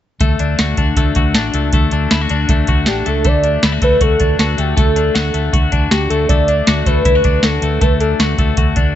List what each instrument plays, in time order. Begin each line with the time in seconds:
0.21 fingered electric bass D2, clean electric guitar A3, kick, closed hi-hat
0.39 fingered electric bass D2, clean electric guitar D4, closed hi-hat
0.59 fingered electric bass D2, clean electric guitar F#4, snare, closed hi-hat
0.77 fingered electric bass D2, clean electric guitar D4, kick, closed hi-hat
0.97 fingered electric bass D2, clean electric guitar A3, kick, closed hi-hat
1.15 fingered electric bass D2, clean electric guitar F#4, kick, closed hi-hat
1.34 fingered electric bass A1, clean electric guitar D4, snare, closed hi-hat
1.54 fingered electric bass C#2, clean electric guitar A3, closed hi-hat
1.73 fingered electric bass D2, clean electric guitar A3, kick, closed hi-hat
1.91 fingered electric bass D2, clean electric guitar D4, closed hi-hat
2.11 fingered electric bass D2, clean electric guitar E4, snare, closed hi-hat
2.21 clean electric guitar F#4
2.29 fingered electric bass D2, clean electric guitar D4, closed hi-hat
2.49 fingered electric bass D2, clean electric guitar A3, kick, closed hi-hat
2.67 fingered electric bass D2, clean electric guitar F#4, kick, closed hi-hat
2.86 fingered electric bass A1, clean electric guitar D4, soft synth lead G4, snare, closed hi-hat
3.06 fingered electric bass C#2, clean electric guitar A3, soft synth lead A4, closed hi-hat
3.25 fingered electric bass D2, clean electric guitar A3, soft synth lead D5, kick, closed hi-hat
3.44 clean electric guitar D4, closed hi-hat
3.63 fingered electric bass D2, clean electric guitar E4, snare, closed hi-hat
3.72 clean electric guitar F#4
3.82 fingered electric bass D2, clean electric guitar A3, soft synth lead B4, kick, closed hi-hat
4.01 fingered electric bass D2, clean electric guitar F#4, soft synth lead A4, kick, closed hi-hat
4.20 fingered electric bass D2, clean electric guitar D4, kick, closed hi-hat
4.39 fingered electric bass D2, clean electric guitar F#4, soft synth lead A4, snare, closed hi-hat
4.58 fingered electric bass D2, clean electric guitar A3, soft synth lead G4, closed hi-hat
4.77 fingered electric bass D2, clean electric guitar A3, soft synth lead A4, kick, closed hi-hat
4.96 clean electric guitar D4, closed hi-hat
5.15 fingered electric bass D2, clean electric guitar F#4, snare, closed hi-hat
5.34 fingered electric bass D2, clean electric guitar A3, closed hi-hat
5.53 fingered electric bass D2, clean electric guitar F#4, kick, closed hi-hat
5.72 fingered electric bass D2, clean electric guitar D4, kick, closed hi-hat
5.91 fingered electric bass D2, clean electric guitar F#4, soft synth lead G4, snare, closed hi-hat
6.10 fingered electric bass D2, clean electric guitar A3, soft synth lead A4, closed hi-hat
6.29 fingered electric bass D2, clean electric guitar A3, soft synth lead D5, kick, closed hi-hat
6.48 clean electric guitar D4, closed hi-hat
6.67 fingered electric bass D2, clean electric guitar F#4, snare, closed hi-hat
6.86 fingered electric bass D2, clean electric guitar A3, soft synth lead B4, kick, closed hi-hat
7.05 fingered electric bass D2, clean electric guitar E4, kick, closed hi-hat
7.15 clean electric guitar F#4
7.24 fingered electric bass D2, clean electric guitar D4, kick, closed hi-hat
7.43 fingered electric bass D2, clean electric guitar F#4, soft synth lead A4, snare, closed hi-hat
7.62 fingered electric bass D2, clean electric guitar A3, closed hi-hat
7.81 fingered electric bass D2, clean electric guitar A3, soft synth lead B4, kick, closed hi-hat
8.01 clean electric guitar D4, soft synth lead A4, closed hi-hat
8.19 fingered electric bass D2, clean electric guitar F#4, snare, closed hi-hat
8.38 fingered electric bass D2, clean electric guitar A3, kick, closed hi-hat
8.57 fingered electric bass D2, clean electric guitar F#4, kick, closed hi-hat
8.76 fingered electric bass D2, clean electric guitar D4, kick, closed hi-hat